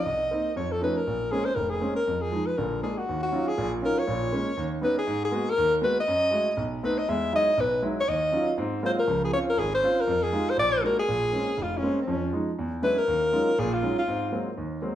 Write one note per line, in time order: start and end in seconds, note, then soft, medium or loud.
0.00 0.52 D#5 medium
0.06 0.27 C2 medium
0.31 0.47 A#3 soft
0.31 0.47 C4 soft
0.31 0.47 D#4 soft
0.56 0.78 F2 medium
0.56 0.73 C#5 medium
0.71 0.82 A4 medium
0.80 0.97 F3 medium
0.80 0.97 A3 soft
0.80 0.97 C#4 soft
0.80 0.97 D#4 medium
0.80 0.98 B4 medium
0.97 1.33 A#4 medium
1.07 1.28 A#1 medium
1.32 1.47 G#3 soft
1.32 1.48 A#3 soft
1.32 1.48 C4 soft
1.32 1.48 C#4 medium
1.32 1.47 G#4 medium
1.45 1.57 C5 medium
1.55 1.78 F1 medium
1.55 1.71 A#4 medium
1.70 1.95 G#4 medium
1.81 1.97 G#3 soft
1.81 1.97 A#3 soft
1.81 1.97 C4 soft
1.81 1.97 C#4 medium
1.96 2.23 A#4 medium
2.07 2.28 F2 medium
2.22 2.48 G#4 medium
2.32 2.48 F3 soft
2.32 2.48 G#3 soft
2.32 2.48 D#4 soft
2.46 2.59 B4 medium
2.57 2.79 A#1 medium
2.57 2.79 D3 medium
2.57 2.82 A#4 medium
2.83 2.98 G#3 soft
2.83 2.98 A#3 soft
2.83 2.99 D4 medium
2.83 2.99 G#4 medium
2.98 3.22 F#4 medium
3.09 3.29 D#2 medium
3.23 3.49 F#4 medium
3.32 3.48 F#3 medium
3.32 3.48 C#4 soft
3.32 3.48 D#4 soft
3.32 3.48 F4 medium
3.48 3.72 G#4 medium
3.58 3.79 A#1 medium
3.58 3.79 A#2 medium
3.82 3.98 F#3 soft
3.82 3.98 C#4 soft
3.82 3.98 D#4 soft
3.82 3.98 F4 medium
3.82 4.00 A#4 medium
3.99 4.73 C#5 medium
4.07 4.29 A#1 medium
4.07 4.29 A#2 medium
4.32 4.48 G#3 soft
4.32 4.48 A#3 soft
4.32 4.48 C#4 medium
4.57 4.79 D#2 medium
4.81 4.97 G3 medium
4.81 4.98 B3 soft
4.81 4.98 C#4 soft
4.81 4.98 D#4 medium
4.81 4.96 B4 medium
4.98 5.21 G#4 medium
5.07 5.28 G#2 medium
5.25 5.52 G#4 medium
5.32 5.47 G#3 medium
5.32 5.48 A#3 soft
5.32 5.48 B3 soft
5.32 5.48 F#4 medium
5.50 5.73 A#4 loud
5.58 5.79 D#2 medium
5.82 5.97 G#3 medium
5.82 5.97 A#3 soft
5.82 5.98 B3 soft
5.82 5.98 F#4 medium
5.82 5.97 B4 medium
6.00 6.69 D#5 medium
6.08 6.29 F#2 medium
6.31 6.47 G#3 soft
6.31 6.47 A3 soft
6.31 6.48 E4 soft
6.31 6.48 F#4 medium
6.57 6.78 B1 medium
6.83 6.98 A3 medium
6.83 6.98 B3 soft
6.83 6.98 C4 soft
6.83 6.98 D#4 medium
6.83 7.00 B4 medium
6.98 7.10 D#5 medium
7.09 7.29 E2 medium
7.09 7.29 G#3 medium
7.09 7.33 E5 loud
7.33 7.48 F#3 soft
7.33 7.48 G#3 soft
7.33 7.48 D#4 soft
7.33 7.48 E4 medium
7.33 7.62 D#5 loud
7.57 7.79 B1 medium
7.57 7.84 B4 medium
7.82 7.98 F#3 medium
7.82 7.98 G#3 soft
7.82 7.98 D#4 soft
7.82 7.98 E4 medium
8.00 8.10 C#5 medium
8.08 8.29 D#2 medium
8.08 8.56 D#5 medium
8.32 8.48 F#3 medium
8.32 8.48 C#4 soft
8.32 8.48 D#4 medium
8.32 8.48 F4 medium
8.58 8.79 G#2 medium
8.58 8.79 C4 medium
8.83 8.98 F#3 medium
8.83 8.98 G#3 soft
8.83 8.98 A#3 medium
8.83 8.98 C4 medium
8.83 8.98 F4 medium
8.83 8.92 C5 medium
8.99 9.21 A#4 medium
9.07 9.29 C#2 medium
9.07 9.29 F3 medium
9.24 9.33 G#4 medium
9.33 9.48 C4 medium
9.33 9.48 C#4 soft
9.33 9.48 F4 medium
9.33 9.40 C#5 medium
9.50 9.61 A#4 medium
9.57 9.79 G#1 medium
9.57 9.73 G#4 medium
9.74 10.02 C5 loud
9.83 9.98 C4 medium
9.83 9.98 C#4 soft
9.83 9.99 F4 medium
10.01 10.24 A#4 medium
10.07 10.29 F2 medium
10.23 10.51 G#4 medium
10.33 10.48 G#3 soft
10.33 10.48 D#4 medium
10.33 10.48 F4 soft
10.33 10.48 G4 medium
10.50 10.59 C5 medium
10.57 10.78 A#1 medium
10.57 10.82 D5 medium
10.83 10.98 G#3 soft
10.83 10.98 A#3 soft
10.83 10.98 D4 soft
10.83 10.99 F#4 medium
10.83 10.98 A#4 medium
10.99 11.64 G#4 loud
11.08 11.29 A#1 medium
11.08 11.29 A#2 medium
11.32 11.48 G#3 soft
11.32 11.48 A#3 soft
11.32 11.48 C4 soft
11.32 11.48 C#4 medium
11.57 11.79 F1 medium
11.62 11.79 F4 medium
11.77 12.00 C#4 medium
11.83 11.98 G#3 soft
11.83 11.98 A#3 soft
11.83 11.99 C4 soft
11.83 11.99 C#4 medium
12.01 12.46 C#4 medium
12.07 12.29 F2 medium
12.07 12.29 F3 medium
12.33 12.48 F3 soft
12.33 12.48 G#3 soft
12.33 12.49 D#4 medium
12.59 12.79 E2 medium
12.82 12.98 F#3 medium
12.82 12.98 G#3 soft
12.82 12.98 C#4 soft
12.82 12.98 D4 soft
12.82 12.98 E4 medium
12.82 13.00 B4 medium
12.98 13.61 A#4 medium
13.08 13.29 D#2 medium
13.32 13.48 F#3 medium
13.32 13.48 G#3 soft
13.32 13.48 C#4 soft
13.32 13.48 D#4 soft
13.32 13.49 F4 medium
13.58 13.79 A#1 medium
13.58 13.79 A#2 medium
13.58 13.75 G#4 medium
13.73 13.98 F4 medium
13.83 13.98 F#3 soft
13.83 13.98 G#3 soft
13.83 13.99 C#4 soft
13.83 13.99 D#4 soft
13.83 13.99 F4 medium
13.98 14.44 F4 medium
14.08 14.29 G#2 medium
14.08 14.29 C4 medium
14.32 14.48 F#3 soft
14.32 14.48 G#3 soft
14.32 14.48 A#3 soft
14.32 14.48 C4 soft
14.58 14.79 D#2 medium
14.82 14.95 F#3 soft
14.82 14.95 G#3 soft
14.82 14.95 A#3 soft
14.82 14.95 C4 medium